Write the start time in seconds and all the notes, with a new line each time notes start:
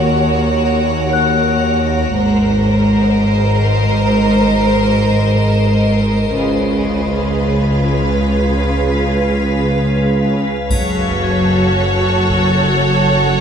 Already playing: D#2 F#4 A#4 C#5 F#5
1.13 F#5 F#6
2.16 G#1 G#2 A#4 C5 D#5
6.37 C#2 C#3 F4 G#4 B4 F5
10.70 F#1 F#2 F#4 A4 C#5 F#5, taiko, triangle
11.24 G#6
12.30 taiko